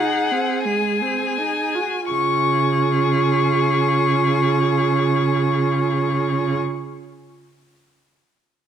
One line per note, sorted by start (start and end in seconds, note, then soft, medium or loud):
0.00 0.41 C#3 soft
0.00 0.33 D#4 soft
0.00 1.82 G#4 soft
0.00 0.65 F#5 soft
0.31 0.67 C4 soft
0.65 1.03 G#3 soft
0.65 2.08 G#5 soft
1.02 1.40 C4 soft
1.38 1.77 D#4 soft
1.75 2.10 F#4 soft
2.11 6.58 C#3 soft
2.11 6.57 F4 soft
2.11 6.57 G#4 soft
2.11 6.59 C#6 soft